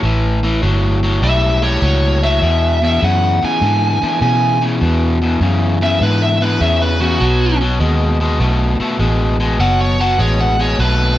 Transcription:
0.03 0.61 A1 medium
0.03 0.39 A2 medium
0.03 0.39 E3 medium
0.43 0.60 A2 medium
0.43 0.61 E3 medium
0.62 1.21 G1 medium
0.62 0.99 A2 medium
0.62 0.99 F#3 medium
1.03 1.20 A2 medium
1.03 1.20 F#3 medium
1.22 1.80 B1 medium
1.22 1.58 A2 medium
1.22 1.59 G3 medium
1.22 1.62 E5 medium
1.63 1.80 A2 medium
1.63 1.80 G3 medium
1.63 2.21 C#5 medium
1.82 2.40 C#2 medium
1.82 2.18 A2 medium
1.82 2.19 F#3 medium
2.23 2.40 A2 medium
2.23 2.40 F#3 medium
2.23 2.81 E5 medium
2.42 2.78 E2 medium
2.42 3.00 E2 medium
2.42 2.78 B2 medium
2.82 2.99 E2 medium
2.82 3.00 B2 medium
2.82 3.02 E5 medium
3.01 3.38 E2 medium
3.01 3.40 F#2 medium
3.01 3.38 C#3 medium
3.01 3.42 F#5 medium
3.42 3.59 E2 medium
3.42 3.60 C#3 medium
3.42 4.20 G#5 medium
3.42 muted fingered electric bass stroke soft
3.61 3.98 E2 medium
3.61 3.99 G#2 medium
3.61 3.98 D3 medium
4.02 4.19 E2 medium
4.02 4.19 D3 medium
4.02 muted fingered electric bass stroke soft
4.21 4.57 E2 medium
4.21 4.79 B2 medium
4.21 4.58 C#3 medium
4.21 4.61 G#5 medium
4.61 4.79 E2 medium
4.61 4.79 C#3 medium
4.80 5.17 E2 medium
4.80 5.39 E2 medium
4.80 5.17 B2 medium
5.22 5.39 E2 medium
5.22 5.39 B2 medium
5.41 5.77 E2 medium
5.41 5.99 F#2 medium
5.41 5.77 C#3 medium
5.81 5.99 E2 medium
5.81 5.99 C#3 medium
5.81 6.01 E5 medium
6.00 6.37 E2 medium
6.00 6.59 G#2 medium
6.00 6.37 D3 medium
6.00 6.21 B4 medium
6.22 6.41 E5 medium
6.41 6.58 E2 medium
6.41 6.58 D3 medium
6.41 6.61 B4 medium
6.60 7.18 E2 medium
6.60 6.97 E2 medium
6.60 6.97 C#3 medium
6.60 6.80 E5 medium
6.82 7.00 B4 medium
7.00 7.18 E2 medium
7.00 7.18 C#3 medium
7.00 7.58 F#4 medium
7.20 7.78 B1 medium
7.20 7.57 B2 medium
7.20 7.57 F#3 medium
7.61 7.78 B2 medium
7.61 7.78 F#3 medium
7.80 8.38 D#2 medium
7.80 8.16 B2 medium
7.80 8.17 G#3 medium
8.20 8.38 B2 medium
8.20 8.38 G#3 medium
8.40 8.77 B1 medium
8.40 8.76 B2 medium
8.40 8.76 A3 medium
8.80 8.98 B2 medium
8.80 8.98 A3 medium
8.80 muted fingered electric bass stroke soft
8.99 9.57 A1 medium
8.99 9.36 B2 medium
8.99 9.36 G#3 medium
9.40 9.57 B2 medium
9.40 9.58 G#3 medium
9.59 10.17 F#1 medium
9.59 9.96 B2 medium
9.59 9.96 F#3 medium
9.59 9.79 F#5 medium
9.81 10.00 C#5 medium
10.00 10.17 B2 medium
10.00 10.17 F#3 medium
10.00 10.20 F#5 medium
10.18 10.77 A1 medium
10.18 10.55 B2 medium
10.18 10.56 G#3 medium
10.18 10.39 C#5 medium
10.41 10.59 F#5 medium
10.59 10.77 B2 medium
10.59 10.77 G#3 medium
10.59 10.79 C#5 medium
10.79 11.18 B1 medium
10.79 11.15 B2 medium
10.79 11.16 A3 medium
10.79 11.18 B4 medium

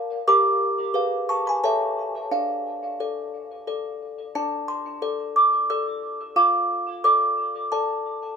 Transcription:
0.00 0.23 A#4 medium
0.00 0.24 D5 medium
0.00 0.25 F5 medium
0.28 0.93 G4 medium
0.28 0.91 A#4 soft
0.28 0.91 D#5 medium
0.28 1.25 A#5 medium
0.28 1.25 D6 loud
0.94 1.60 G#4 medium
0.94 1.58 B4 soft
0.94 1.59 F5 soft
1.29 1.45 A5 medium
1.29 1.46 C#6 medium
1.47 1.63 G#5 medium
1.47 1.63 B5 medium
1.64 2.29 A4 medium
1.64 2.27 C#5 soft
1.64 2.28 E5 medium
1.64 2.28 A5 loud
2.31 2.97 D4 medium
2.31 2.99 D5 medium
2.31 3.98 F5 medium
3.00 3.64 A4 soft
3.00 3.64 D5 soft
3.67 4.31 A4 soft
3.67 4.31 D5 soft
4.35 5.01 D4 medium
4.35 5.01 D5 medium
4.35 4.68 A5 medium
4.68 5.33 C6 loud
5.02 5.66 A4 soft
5.02 5.66 D5 medium
5.36 5.68 D6 medium
5.70 6.33 A4 soft
5.70 6.33 D5 medium
5.70 6.34 E6 loud
6.36 7.02 F4 medium
6.36 7.02 F5 medium
6.36 7.01 D6 loud
7.04 7.68 A4 soft
7.04 7.68 D5 medium
7.04 7.69 D6 loud
7.72 8.35 A4 soft
7.72 8.35 D5 medium
7.72 8.36 A5 loud

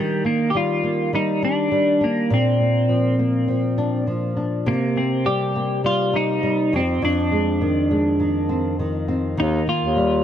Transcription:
0.00 2.31 D#3 medium
0.00 0.26 G3 medium
0.00 1.42 D4 medium
0.24 0.83 A#3 soft
0.24 0.50 A#3 medium
0.50 0.56 G4 medium
0.54 1.12 G3 soft
0.54 1.11 F4 medium
0.83 2.60 A#3 medium
1.13 1.70 G3 medium
1.13 1.44 D#4 medium
1.42 2.00 D4 medium
1.42 2.04 D4 medium
1.71 2.37 G3 medium
2.01 2.30 A#3 medium
2.01 3.77 D4 medium
2.30 4.66 A#2 medium
2.30 4.05 C4 medium
2.61 3.19 A#3 soft
2.89 3.47 F3 soft
3.19 4.96 A#3 medium
3.48 4.06 F3 medium
3.78 4.35 D4 medium
4.07 4.73 F3 medium
4.37 4.73 D4 medium
4.66 6.79 C3 medium
4.66 4.98 A#3 medium
4.96 5.54 A#3 soft
4.96 5.27 C4 medium
5.25 5.83 G3 medium
5.25 5.81 G4 medium
5.55 6.80 A#3 medium
5.84 6.42 G3 medium
5.84 6.16 F4 medium
6.13 7.05 D#4 medium
6.13 6.76 D#4 medium
6.43 6.79 G3 medium
6.73 7.01 F2 medium
6.73 7.04 C4 medium
7.02 9.38 F2 medium
7.02 8.76 D4 medium
7.32 7.90 G#3 soft
7.61 8.19 D#3 soft
7.91 9.45 G#3 medium
8.20 8.79 D#3 medium
8.49 9.07 C4 medium
8.79 9.37 D#3 medium
9.08 9.44 C4 medium
9.37 9.62 D#2 medium
9.37 10.24 D#3 medium
9.37 9.66 D#4 medium
9.67 10.24 A#3 medium
9.67 10.23 F4 medium
9.83 10.24 D#2 medium
9.96 10.24 G3 medium

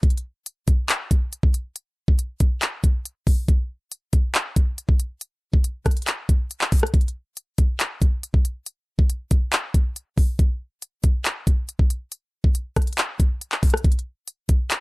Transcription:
0.03 kick loud
0.03 closed hi-hat medium
0.10 closed hi-hat soft
0.17 closed hi-hat soft
0.46 closed hi-hat medium
0.68 kick loud
0.68 closed hi-hat medium
0.89 clap loud
0.89 closed hi-hat medium
1.11 kick medium
1.11 closed hi-hat medium
1.33 closed hi-hat medium
1.43 kick medium
1.54 closed hi-hat medium
1.76 closed hi-hat medium
2.08 kick loud
2.19 closed hi-hat medium
2.40 kick loud
2.40 closed hi-hat medium
2.62 clap loud
2.62 closed hi-hat medium
2.84 kick medium
2.84 closed hi-hat medium
3.05 closed hi-hat medium
3.27 kick medium
3.27 open hi-hat medium
3.48 kick loud
3.48 closed hi-hat medium
3.92 closed hi-hat medium
4.13 kick loud
4.13 closed hi-hat medium
4.35 clap loud
4.35 closed hi-hat medium
4.56 kick loud
4.56 closed hi-hat medium
4.78 closed hi-hat medium
4.89 kick medium
5.00 closed hi-hat medium
5.21 closed hi-hat medium
5.54 kick loud
5.64 closed hi-hat medium
5.86 kick loud
5.86 cross-stick medium
5.86 closed hi-hat medium
5.91 closed hi-hat medium
5.97 closed hi-hat medium
6.02 closed hi-hat medium
6.07 clap loud
6.07 closed hi-hat medium
6.29 kick medium
6.29 closed hi-hat medium
6.51 closed hi-hat medium
6.61 clap loud
6.72 kick medium
6.72 closed hi-hat medium
6.72 open hi-hat medium
6.79 cross-stick medium
6.79 closed hi-hat medium
6.87 closed hi-hat medium
6.94 kick loud
6.94 closed hi-hat medium
7.01 closed hi-hat soft
7.08 closed hi-hat soft
7.37 closed hi-hat medium
7.58 kick loud
7.58 closed hi-hat medium
7.80 clap loud
7.80 closed hi-hat medium
8.02 kick medium
8.02 closed hi-hat medium
8.23 closed hi-hat medium
8.34 kick medium
8.45 closed hi-hat medium
8.66 closed hi-hat medium
8.99 kick loud
9.10 closed hi-hat medium
9.31 kick loud
9.31 closed hi-hat medium
9.53 clap loud
9.53 closed hi-hat medium
9.74 kick medium
9.74 closed hi-hat medium
9.96 closed hi-hat medium
10.18 kick medium
10.18 open hi-hat medium
10.39 kick loud
10.39 closed hi-hat medium
10.82 closed hi-hat medium
11.04 kick loud
11.04 closed hi-hat medium
11.25 clap loud
11.25 closed hi-hat medium
11.47 kick medium
11.47 closed hi-hat medium
11.69 closed hi-hat medium
11.79 kick medium
11.90 closed hi-hat medium
12.12 closed hi-hat medium
12.44 kick loud
12.55 closed hi-hat medium
12.76 kick loud
12.76 cross-stick medium
12.76 closed hi-hat medium
12.82 closed hi-hat medium
12.87 closed hi-hat medium
12.93 closed hi-hat medium
12.98 clap loud
12.98 closed hi-hat medium
13.20 kick loud
13.20 closed hi-hat medium
13.41 closed hi-hat medium
13.52 clap medium
13.63 kick medium
13.63 closed hi-hat medium
13.63 open hi-hat medium
13.70 cross-stick medium
13.70 closed hi-hat medium
13.77 closed hi-hat medium
13.84 kick loud
13.84 closed hi-hat medium
13.92 closed hi-hat soft
13.99 closed hi-hat soft
14.28 closed hi-hat medium
14.49 kick loud
14.49 closed hi-hat medium
14.71 clap loud
14.71 closed hi-hat medium

